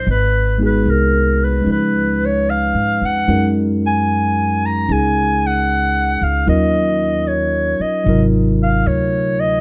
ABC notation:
X:1
M:4/4
L:1/8
Q:"Swing" 1/4=75
K:Gblyd
V:1 name="Clarinet"
_c c B c c d f g | z a2 b a g2 f | e2 d e z f d e |]
V:2 name="Tine electric piano"
z [A,_CEGA]3 [F,A,DE_c]4 | [A,DEGB]4 [DEA]4 | [G,DEFB]4 [C,G,EFB]4 |]
V:3 name="Upright bass" clef=bass
A,,,2 C,,2 D,,2- (3D,, A,, F,, | G,,4 D,,3 D,, | E,,3 z A,,,2 =D,,2 |]